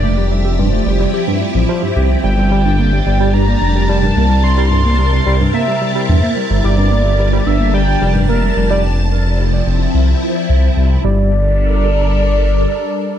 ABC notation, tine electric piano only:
X:1
M:4/4
L:1/16
Q:1/4=109
K:Gdor
V:1 name="Tine electric piano" clef=bass
A, G, G, G G,, A, G, G, G G,, G, F, F, G,, G C | G, G, G, G,, B, G, G, G, G,, B, G, G, G, G,, B, G, | G, G, G,, B, G, G, G, G,, B, G, G, G, G,, B, G, G, | G, G,, B, G, G, G, G,, B, G, G, G, G,, B, G, G, G, |
z16 | G,2 z12 z2 |]